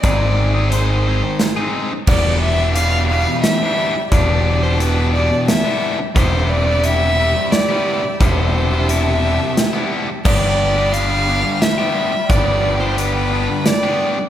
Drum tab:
CC |------|x-----|------|------|
HH |x-x-x-|--x-x-|x-x-x-|x-x-x-|
SD |----o-|----o-|----o-|----o-|
BD |o-----|o-----|o-----|o-----|

CC |------|x-----|------|
HH |x-x-x-|--x-x-|x-x-x-|
SD |----o-|----o-|----o-|
BD |o-----|o-----|o-----|